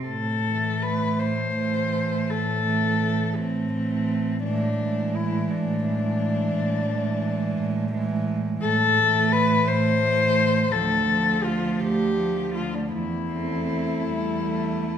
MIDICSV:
0, 0, Header, 1, 5, 480
1, 0, Start_track
1, 0, Key_signature, 0, "minor"
1, 0, Tempo, 734394
1, 55, Time_signature, 12, 3, 24, 8
1, 1494, Tempo, 714286
1, 2934, Tempo, 697674
1, 7254, Tempo, 728155
1, 8214, Tempo, 761421
1, 9989, End_track
2, 0, Start_track
2, 0, Title_t, "Cello"
2, 0, Program_c, 0, 42
2, 48, Note_on_c, 0, 69, 87
2, 540, Note_on_c, 0, 71, 91
2, 550, Note_off_c, 0, 69, 0
2, 781, Note_on_c, 0, 72, 90
2, 791, Note_off_c, 0, 71, 0
2, 1505, Note_on_c, 0, 69, 89
2, 1515, Note_off_c, 0, 72, 0
2, 2223, Note_on_c, 0, 60, 78
2, 2234, Note_off_c, 0, 69, 0
2, 2935, Note_off_c, 0, 60, 0
2, 2939, Note_on_c, 0, 62, 88
2, 3434, Note_on_c, 0, 64, 83
2, 3445, Note_off_c, 0, 62, 0
2, 3675, Note_on_c, 0, 62, 83
2, 3686, Note_off_c, 0, 64, 0
2, 5586, Note_off_c, 0, 62, 0
2, 5815, Note_on_c, 0, 69, 115
2, 6303, Note_on_c, 0, 71, 111
2, 6313, Note_off_c, 0, 69, 0
2, 6543, Note_on_c, 0, 72, 112
2, 6553, Note_off_c, 0, 71, 0
2, 7259, Note_on_c, 0, 69, 105
2, 7269, Note_off_c, 0, 72, 0
2, 7736, Note_on_c, 0, 65, 89
2, 7746, Note_off_c, 0, 69, 0
2, 7971, Note_on_c, 0, 67, 89
2, 7981, Note_off_c, 0, 65, 0
2, 8448, Note_off_c, 0, 67, 0
2, 8457, Note_on_c, 0, 65, 76
2, 8578, Note_on_c, 0, 62, 65
2, 8588, Note_off_c, 0, 65, 0
2, 8690, Note_off_c, 0, 62, 0
2, 8694, Note_on_c, 0, 64, 84
2, 9989, Note_off_c, 0, 64, 0
2, 9989, End_track
3, 0, Start_track
3, 0, Title_t, "Cello"
3, 0, Program_c, 1, 42
3, 302, Note_on_c, 1, 57, 53
3, 1006, Note_off_c, 1, 57, 0
3, 1024, Note_on_c, 1, 57, 56
3, 1726, Note_off_c, 1, 57, 0
3, 1738, Note_on_c, 1, 57, 51
3, 2442, Note_off_c, 1, 57, 0
3, 2448, Note_on_c, 1, 57, 52
3, 2920, Note_off_c, 1, 57, 0
3, 2941, Note_on_c, 1, 56, 50
3, 3173, Note_off_c, 1, 56, 0
3, 3177, Note_on_c, 1, 56, 57
3, 3892, Note_off_c, 1, 56, 0
3, 3916, Note_on_c, 1, 56, 55
3, 4618, Note_off_c, 1, 56, 0
3, 4631, Note_on_c, 1, 56, 60
3, 5332, Note_off_c, 1, 56, 0
3, 5345, Note_on_c, 1, 56, 62
3, 5808, Note_off_c, 1, 56, 0
3, 6053, Note_on_c, 1, 57, 68
3, 6758, Note_off_c, 1, 57, 0
3, 6774, Note_on_c, 1, 57, 67
3, 7244, Note_off_c, 1, 57, 0
3, 7252, Note_on_c, 1, 57, 53
3, 7486, Note_off_c, 1, 57, 0
3, 7503, Note_on_c, 1, 57, 59
3, 8205, Note_off_c, 1, 57, 0
3, 8221, Note_on_c, 1, 57, 53
3, 8682, Note_off_c, 1, 57, 0
3, 8943, Note_on_c, 1, 60, 49
3, 9362, Note_off_c, 1, 60, 0
3, 9411, Note_on_c, 1, 55, 60
3, 9894, Note_on_c, 1, 57, 48
3, 9903, Note_off_c, 1, 55, 0
3, 9989, Note_off_c, 1, 57, 0
3, 9989, End_track
4, 0, Start_track
4, 0, Title_t, "Cello"
4, 0, Program_c, 2, 42
4, 302, Note_on_c, 2, 52, 55
4, 1006, Note_off_c, 2, 52, 0
4, 1022, Note_on_c, 2, 52, 58
4, 1725, Note_off_c, 2, 52, 0
4, 1746, Note_on_c, 2, 52, 56
4, 2445, Note_off_c, 2, 52, 0
4, 2467, Note_on_c, 2, 52, 50
4, 2930, Note_off_c, 2, 52, 0
4, 2938, Note_on_c, 2, 52, 53
4, 3175, Note_off_c, 2, 52, 0
4, 3184, Note_on_c, 2, 52, 59
4, 3896, Note_off_c, 2, 52, 0
4, 3917, Note_on_c, 2, 52, 61
4, 4618, Note_off_c, 2, 52, 0
4, 4627, Note_on_c, 2, 52, 65
4, 5330, Note_off_c, 2, 52, 0
4, 5342, Note_on_c, 2, 52, 60
4, 5807, Note_off_c, 2, 52, 0
4, 6057, Note_on_c, 2, 52, 66
4, 6760, Note_off_c, 2, 52, 0
4, 6776, Note_on_c, 2, 52, 65
4, 7240, Note_off_c, 2, 52, 0
4, 7244, Note_on_c, 2, 53, 61
4, 7482, Note_off_c, 2, 53, 0
4, 7487, Note_on_c, 2, 53, 67
4, 8197, Note_off_c, 2, 53, 0
4, 8211, Note_on_c, 2, 53, 53
4, 8677, Note_off_c, 2, 53, 0
4, 8934, Note_on_c, 2, 57, 50
4, 9638, Note_off_c, 2, 57, 0
4, 9655, Note_on_c, 2, 57, 48
4, 9989, Note_off_c, 2, 57, 0
4, 9989, End_track
5, 0, Start_track
5, 0, Title_t, "Cello"
5, 0, Program_c, 3, 42
5, 58, Note_on_c, 3, 45, 68
5, 698, Note_off_c, 3, 45, 0
5, 782, Note_on_c, 3, 45, 63
5, 1409, Note_off_c, 3, 45, 0
5, 1494, Note_on_c, 3, 45, 69
5, 2134, Note_off_c, 3, 45, 0
5, 2218, Note_on_c, 3, 45, 62
5, 2849, Note_off_c, 3, 45, 0
5, 2935, Note_on_c, 3, 45, 74
5, 3578, Note_off_c, 3, 45, 0
5, 3672, Note_on_c, 3, 45, 71
5, 4308, Note_off_c, 3, 45, 0
5, 4389, Note_on_c, 3, 45, 72
5, 5022, Note_off_c, 3, 45, 0
5, 5106, Note_on_c, 3, 45, 71
5, 5733, Note_off_c, 3, 45, 0
5, 5816, Note_on_c, 3, 45, 82
5, 6453, Note_off_c, 3, 45, 0
5, 6538, Note_on_c, 3, 45, 76
5, 7167, Note_off_c, 3, 45, 0
5, 7254, Note_on_c, 3, 38, 79
5, 7886, Note_off_c, 3, 38, 0
5, 7969, Note_on_c, 3, 38, 71
5, 8601, Note_off_c, 3, 38, 0
5, 8691, Note_on_c, 3, 40, 65
5, 9329, Note_off_c, 3, 40, 0
5, 9416, Note_on_c, 3, 40, 56
5, 9989, Note_off_c, 3, 40, 0
5, 9989, End_track
0, 0, End_of_file